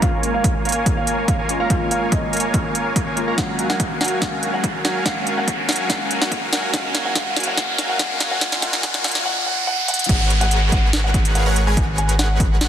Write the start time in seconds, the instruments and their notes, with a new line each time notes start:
Already playing: sub bass A#1, synth keys C#4 F4, riser
0.00 synth keys G#3 A#3 C#4 F4, supersaw synth A#3 A#4 C#5 F5 G#5, grand piano F5, kick, closed hi-hat
0.23 closed hi-hat
0.34 grand piano F5
0.44 kick, closed hi-hat
0.65 supersaw synth A#3 A#4 C#5 F5 G#5, grand piano F5, closed hi-hat
0.69 closed hi-hat
0.72 closed hi-hat
0.86 kick, closed hi-hat
0.97 grand piano F5
1.07 closed hi-hat
1.28 supersaw synth A#3 A#4 F5, grand piano F5, kick, closed hi-hat
1.39 supersaw synth A#3 A#4 C#5 F5 G#5
1.48 synth keys G#3 A#3 C#4 F4, closed hi-hat
1.60 supersaw synth A#3 A#4 C#5 F5 A#5, grand piano F5
1.68 synth keys G#3 A#3 C#4, supersaw synth A#3 A#4 F5, kick, closed hi-hat
1.72 synth keys F4
1.91 grand piano F5, closed hi-hat
2.12 grand piano D#5, kick, closed hi-hat
2.33 supersaw synth A#3 A#4 C#5 F5 G#5, closed hi-hat
2.37 closed hi-hat
2.40 closed hi-hat
2.54 kick, closed hi-hat
2.75 closed hi-hat
2.96 supersaw synth A#3 C#5 F5, kick, closed hi-hat
3.07 supersaw synth A#3 A#4 C#5 F5 G#5
3.16 synth keys G#3 A#3 C#4 F4, closed hi-hat
3.28 supersaw synth A#3 A#4 C#5 F5 A#5
3.36 sub bass F#1, supersaw synth F#3 F#4, synth keys G#3 A#3 C#4, grand piano F#5, kick, snare, closed hi-hat
3.40 synth keys F5
3.59 closed hi-hat
3.70 grand piano F#5, snare
3.80 kick, closed hi-hat
4.01 supersaw synth F#3 F#4 A#4 F5 G#5, grand piano F#5, snare, closed hi-hat
4.04 closed hi-hat
4.08 closed hi-hat
4.20 synth keys G#3 A#3 C#4, grand piano F#5, kick, snare, closed hi-hat
4.24 synth keys F5
4.43 closed hi-hat
4.54 grand piano F#5
4.64 kick, closed hi-hat
4.85 supersaw synth F#3 F#4 A#4 F5 G#5, grand piano F#5, snare, closed hi-hat
5.04 supersaw synth F#3 F#4 A#4 F5, synth keys G#3 A#3 C#4 F5, grand piano F#5, kick, snare, closed hi-hat
5.27 closed hi-hat
5.38 grand piano F#5
5.48 kick, closed hi-hat
5.69 supersaw synth F#3 F#4 A#4 F5 G#5, grand piano F#5, snare, closed hi-hat
5.72 closed hi-hat
5.76 closed hi-hat
5.88 supersaw synth F#3 F#4 A#4 F5 G#5, synth keys G#3 A#3 C#4, grand piano F#5, kick, snare, closed hi-hat
5.92 synth keys F5
6.11 closed hi-hat
6.21 grand piano F#5, snare
6.32 kick, closed hi-hat
6.53 supersaw synth F#3 F#4 A#4 F5 G#5, grand piano F#5, snare, closed hi-hat
6.72 synth keys G#3 A#3 C#4 F5, grand piano F#5, kick, snare, closed hi-hat
6.95 snare, closed hi-hat
7.05 grand piano F#5
7.13 synth keys G#3 A#3 C#4 F5, grand piano F#5, kick, snare, closed hi-hat
7.37 snare, closed hi-hat
7.40 closed hi-hat
7.43 grand piano F#5, closed hi-hat
7.55 synth keys G#3 A#3 C#4 F5, grand piano F#5, kick, snare, closed hi-hat
7.78 snare, closed hi-hat
7.89 grand piano F#5
7.97 synth keys G#3 A#3 C#4, grand piano F#5, kick, snare, closed hi-hat
8.01 synth keys F5
8.20 snare, closed hi-hat
8.31 grand piano F#5
8.39 supersaw synth F#3, synth keys G#3 A#3 C#4, grand piano F#5, kick, snare, closed hi-hat
8.43 synth keys F4
8.52 snare
8.60 supersaw synth F#3 F#4 A#4 F5 G#5, synth keys G#3 A#3 C#4 F4, grand piano F#5, snare, closed hi-hat
8.73 snare
8.81 supersaw synth F#3 A#4 G#5, synth keys G#3 A#3 C#4 F4, grand piano F#5, kick, snare, closed hi-hat
8.94 snare
9.02 supersaw synth F#3 F#4 A#4 F5 G#5, synth keys G#3 A#3 C#4, grand piano F#5, snare, closed hi-hat
9.06 synth keys F4, closed hi-hat
9.11 snare, closed hi-hat
9.25 grand piano F#5
9.46 grand piano F#5
9.67 grand piano F#5
9.88 grand piano F#5, closed hi-hat
9.94 closed hi-hat
9.99 closed hi-hat
10.04 closed hi-hat
10.09 sub bass G#1, supersaw synth G#3 G#4 A#4 B4 C#5 F#5, grand piano F#5, digital synth lead F#5, kick, closed hi-hat, crash, downlifter
10.30 closed hi-hat
10.41 grand piano F#5, closed hi-hat
10.51 closed hi-hat
10.72 supersaw synth G#3 G#4 A#4 B4 C#5 F#5, grand piano F#5, digital synth lead F#5, kick, closed hi-hat
10.93 snare, closed hi-hat
11.04 grand piano F#5
11.14 kick, closed hi-hat
11.25 closed hi-hat
11.35 supersaw synth G#3 G#4 A#4 B4 C#5 F5, digital synth lead F5, grand piano F#5, closed hi-hat
11.46 supersaw synth G#3 G#4 A#4 B4 C#5 F#5, digital synth lead F#5
11.56 closed hi-hat
11.67 supersaw synth G#3 G#4 A#4 B4 C#5 G#5, digital synth lead G#5, grand piano G#5
11.77 supersaw synth G#3 G#4 A#4 B4 C#5 F#5, digital synth lead F#5, kick, closed hi-hat
11.98 grand piano G#5, closed hi-hat
12.09 closed hi-hat
12.19 grand piano F#5, snare, closed hi-hat
12.40 supersaw synth G#3 G#4 A#4 B4 C#5 F#5, digital synth lead F#5, kick, closed hi-hat
12.61 snare, closed hi-hat